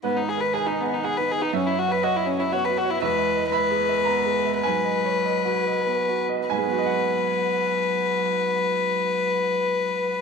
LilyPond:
<<
  \new Staff \with { instrumentName = "Upright piano" } { \time 3/4 \key gis \minor \tempo 4 = 100 << { b'4 gis''4 fis''4 | e''4 dis''4 cis''4 | e''4 b''4 ais''4 | gis''2~ gis''8 r8 |
<gis, gis b fis' dis'' fis'' gis''>2.~ | <gis, gis b fis' dis'' fis'' gis''>2. | } \\ { \tuplet 3/2 { gis,4 ais'8 b'8 dis'8 b'8 b8 dis'8 b'8 } | \tuplet 3/2 { fis,8 cis''8 b'8 cis''8 fis'8 cis''8 b8 fis'8 cis''8 } | \tuplet 3/2 { e,8 e''8 dis''8 e''8 gis'8 e''8 b8 gis'8 e''8 } | \tuplet 3/2 { gis,8 dis''8 cis''8 dis''8 fis'8 dis''8 b8 fis'8 dis''8 } |
r2. | r2. | } >> }
  \new Staff \with { instrumentName = "Violin" } { \time 3/4 \key gis \minor b16 dis'16 gis'16 b'16 gis'16 dis'16 b16 dis'16 gis'16 b'16 gis'16 dis'16 | cis'16 e'16 fis'16 b'16 fis'16 e'16 cis'16 e'16 fis'16 b'16 fis'16 e'16 | b'4 b'2 | b'2~ b'8 r8 |
b'2.~ | b'2. | }
  \new Staff \with { instrumentName = "Cello" } { \clef bass \time 3/4 \key gis \minor dis2. | fis2. | gis4 gis2 | fis2~ fis8 r8 |
fis2.~ | fis2. | }
>>